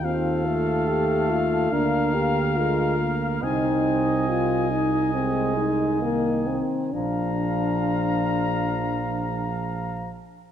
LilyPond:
<<
  \new Staff \with { instrumentName = "Trumpet" } { \time 4/4 \key bes \mixolydian \tempo 4 = 69 f''1 | aes''2.~ aes''8 r8 | bes''2.~ bes''8 r8 | }
  \new Staff \with { instrumentName = "Flugelhorn" } { \time 4/4 \key bes \mixolydian a'2 bes'2 | ees''2.~ ees''8 r8 | f''2.~ f''8 r8 | }
  \new Staff \with { instrumentName = "French horn" } { \time 4/4 \key bes \mixolydian f'4 g'8 f'8 d'8 g'8 f'8 r8 | ees'4 f'8 ees'8 c'8 ees'8 bes8 c'8 | d'2. r4 | }
  \new Staff \with { instrumentName = "Euphonium" } { \time 4/4 \key bes \mixolydian c'8 a4. bes4 aes8 bes8 | c'4. r8 aes4 ees4 | f2.~ f8 r8 | }
  \new Staff \with { instrumentName = "Tuba" } { \clef bass \time 4/4 \key bes \mixolydian ees,2 d,2 | c,2.~ c,8 r8 | bes,,2.~ bes,,8 r8 | }
>>